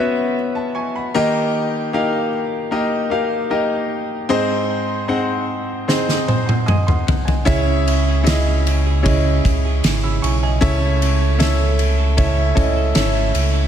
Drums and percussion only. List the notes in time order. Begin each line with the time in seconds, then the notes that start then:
5.89 snare
6.09 snare
6.28 high tom
6.49 high tom
6.68 mid tom
6.88 mid tom
7.08 floor tom
7.28 floor tom
7.47 kick, ride
7.88 ride
8.26 snare, ride
8.67 ride
9.06 kick, ride
9.45 kick, ride
9.84 snare, ride
10.24 ride
10.62 kick, ride
11.02 ride
11.40 snare, ride
11.79 ride
12.18 kick, ride
12.57 kick, ride
12.95 snare, ride
13.35 ride